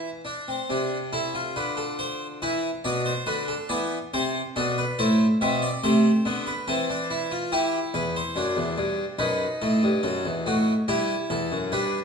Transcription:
0.00 0.21 E3 medium
0.00 0.21 E5 medium
0.25 0.46 D4 medium
0.48 0.69 C4 medium
0.70 1.54 C3 medium
0.70 0.97 D4 medium
1.13 1.34 E4 medium
1.13 1.40 A4 medium
1.35 2.39 F4 medium
1.56 2.40 D3 medium
1.56 1.77 B4 medium
1.77 1.98 A4 medium
1.99 2.26 C5 medium
2.42 2.69 E3 medium
2.42 2.69 E4 medium
2.42 2.69 B4 medium
2.84 3.11 B2 medium
2.84 3.11 D4 medium
2.84 3.05 D5 medium
3.06 3.27 C5 medium
3.26 3.54 D3 medium
3.26 3.54 D4 medium
3.26 3.48 B4 medium
3.48 3.69 A4 medium
3.69 3.97 E3 medium
3.69 3.97 B3 medium
3.69 3.96 D5 medium
4.14 4.40 C3 medium
4.14 4.41 C4 medium
4.14 4.40 C5 loud
4.56 4.83 B2 medium
4.56 4.83 D4 medium
4.56 4.77 A4 medium
4.78 4.99 B4 medium
4.99 5.25 A2 medium
4.99 5.25 E4 medium
4.99 5.25 C5 medium
5.41 5.67 B2 medium
5.41 5.68 C4 medium
5.41 5.62 E5 loud
5.62 5.83 D5 medium
5.84 6.10 C3 medium
5.84 6.10 A3 medium
5.84 6.44 C5 loud
6.25 6.51 D3 medium
6.25 6.51 B3 medium
6.47 6.67 B4 medium
6.68 7.49 E3 medium
6.68 6.88 C4 medium
6.68 7.49 A4 loud
6.90 7.09 D4 medium
7.10 7.30 E4 medium
7.31 7.51 F4 medium
7.52 7.78 E3 medium
7.52 8.33 E4 medium
7.52 7.78 G4 medium
7.94 8.20 E2 loud
7.94 8.14 B4 medium
8.16 9.17 C5 medium
8.36 8.56 F#2 medium
8.36 9.17 D4 medium
8.57 8.77 E2 loud
8.78 9.03 G2 loud
9.19 9.45 F#2 loud
9.19 10.83 D#4 loud
9.19 9.45 B4 medium
9.62 9.81 A2 medium
9.62 9.87 A4 medium
9.83 10.03 G2 loud
10.03 10.23 F#2 loud
10.03 10.29 A4 medium
10.25 10.45 E2 loud
10.46 10.72 A2 loud
10.46 10.72 F#4 medium
10.88 11.14 G2 loud
10.88 11.69 E4 loud
10.88 11.14 G4 loud
11.30 11.50 E2 loud
11.30 11.56 A4 medium
11.52 11.71 F#2 loud
11.72 11.98 G2 loud
11.72 11.98 D4 medium
11.72 11.98 B4 medium

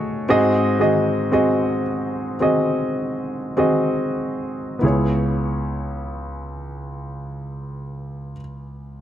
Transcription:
0.00 0.30 A3 medium
0.00 0.29 F#4 medium
0.00 0.30 G#4 medium
0.00 0.24 C#5 medium
0.00 0.30 D#5 medium
0.29 1.82 G#2 medium
0.29 0.77 C4 medium
0.29 0.77 F#4 medium
0.29 0.78 G#4 medium
0.29 0.78 D#5 medium
0.79 1.29 C4 medium
0.79 1.29 F#4 soft
0.79 1.29 G#4 medium
0.79 1.30 D#5 medium
1.32 2.35 C4 medium
1.32 2.35 F#4 soft
1.32 2.35 G#4 medium
1.32 2.36 D#5 medium
2.40 3.51 C4 soft
2.40 3.52 F#4 soft
2.40 3.52 G#4 soft
2.40 3.52 D#5 medium
3.57 4.76 C4 medium
3.57 4.77 F#4 soft
3.57 4.77 G#4 soft
3.57 4.77 D#5 medium
4.79 8.35 C#2 medium
4.79 8.31 B3 soft
4.79 8.34 E4 soft
4.84 8.36 G#4 soft
4.84 8.39 C#5 medium

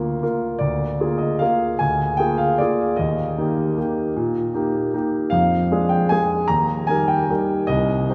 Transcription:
0.00 0.24 D2 soft
0.00 0.18 A#3 soft
0.00 0.18 F4 soft
0.00 0.19 A#4 soft
0.00 0.41 F5 medium
0.23 0.58 A#3 soft
0.23 0.58 F4 soft
0.23 0.58 A#4 soft
0.59 0.99 D2 soft
0.59 1.19 D5 medium
1.00 1.37 A#3 soft
1.00 1.37 F4 soft
1.00 1.37 G#4 soft
1.18 1.40 D#5 soft
1.39 1.76 A#3 soft
1.39 1.76 F4 soft
1.39 1.77 G#4 soft
1.39 1.79 F5 medium
1.79 2.18 D2 soft
1.79 2.18 G#5 medium
2.17 2.55 A#3 soft
2.17 2.55 F4 soft
2.17 2.55 G#4 soft
2.17 2.38 G5 medium
2.38 2.58 F5 medium
2.58 2.95 A#3 soft
2.58 2.95 F4 soft
2.58 2.95 G#4 soft
2.58 2.98 D5 medium
2.96 3.36 D#2 soft
2.96 5.13 D#5 medium
3.38 3.74 A#3 soft
3.38 3.74 D#4 soft
3.38 3.74 G4 soft
3.78 4.12 A#3 soft
3.78 4.12 D#4 soft
3.78 4.13 G4 soft
4.16 4.53 A#2 medium
4.54 4.90 A#3 soft
4.54 4.90 D#4 soft
4.54 4.90 G4 soft
4.94 5.29 A#3 soft
4.94 5.29 D#4 soft
4.94 5.29 G4 soft
5.30 5.70 F2 soft
5.30 5.90 F5 medium
5.72 6.08 G#3 soft
5.72 6.08 D4 soft
5.72 6.08 G#4 soft
5.89 6.10 G5 medium
6.09 6.46 G#3 soft
6.09 6.46 D4 soft
6.09 6.46 G#4 soft
6.09 6.49 G#5 medium
6.48 6.88 D#2 soft
6.48 6.88 A#5 medium
6.87 7.26 G3 soft
6.87 7.26 D#4 soft
6.87 7.26 A#4 soft
6.87 7.08 G#5 medium
7.08 7.68 G5 medium
7.29 7.65 G3 soft
7.29 7.65 D#4 soft
7.29 7.65 A#4 soft
7.67 8.08 C2 soft
7.67 8.14 D#5 medium
8.10 8.14 G3 soft
8.10 8.14 D#4 soft
8.10 8.14 C5 soft

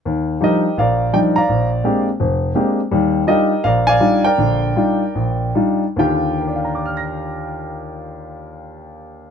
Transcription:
0.05 0.36 D#2 medium
0.41 0.64 F3 soft
0.41 0.65 G3 soft
0.41 0.65 D4 soft
0.41 0.65 D#4 soft
0.41 1.10 G4 soft
0.41 0.79 A#4 soft
0.41 0.76 D#5 medium
0.77 1.08 A#1 medium
0.77 1.46 A#4 medium
0.77 1.36 D5 medium
0.77 1.11 F5 medium
1.13 1.37 F3 soft
1.13 1.37 G3 soft
1.13 1.37 D4 soft
1.13 1.37 D#4 medium
1.13 1.19 G5 medium
1.36 2.04 D5 medium
1.36 2.04 F5 medium
1.36 1.69 A#5 medium
1.49 1.79 A#1 medium
1.84 2.08 G#3 soft
1.84 2.08 A#3 soft
1.84 2.08 C4 soft
1.84 2.08 D4 soft
1.84 2.08 G4 medium
2.20 2.51 F1 medium
2.55 2.79 G#3 soft
2.55 2.79 A#3 soft
2.55 2.79 C4 soft
2.55 2.79 D4 soft
2.55 2.79 G4 medium
2.91 3.23 D#2 medium
2.91 3.22 G3 medium
3.27 3.51 G3 soft
3.27 3.51 D4 soft
3.27 3.52 D#4 soft
3.27 3.52 F4 soft
3.27 3.98 G4 medium
3.27 3.65 A#4 medium
3.27 3.65 D#5 medium
3.64 3.95 A#1 medium
3.64 4.24 A#4 medium
3.64 3.87 D5 medium
3.64 3.85 F5 medium
3.87 4.24 D5 medium
3.87 4.59 F5 medium
3.87 4.21 G#5 medium
4.00 4.25 G3 medium
4.00 4.25 D4 soft
4.00 4.25 D#4 soft
4.00 4.25 F4 medium
4.24 5.52 A#4 medium
4.24 5.53 D5 medium
4.24 5.52 G5 medium
4.38 4.71 A#1 medium
4.38 4.71 D3 medium
4.76 5.02 G3 soft
4.76 5.02 D4 soft
4.76 5.02 D#4 soft
4.76 5.02 F4 soft
5.15 5.50 A#1 medium
5.55 5.83 G3 soft
5.55 5.83 D4 soft
5.55 5.83 D#4 soft
5.55 5.83 F4 soft
5.96 9.30 D#2 medium
5.96 9.30 D3 medium
5.96 9.30 F4 medium
5.96 9.30 G4 medium
5.96 9.30 G5 medium
6.40 9.30 A#4 soft
6.47 9.30 D5 soft
6.56 9.30 F5 soft
6.65 9.30 A#5 soft
6.75 9.30 D6 soft
6.86 9.30 F6 soft
6.97 9.30 A#6 soft

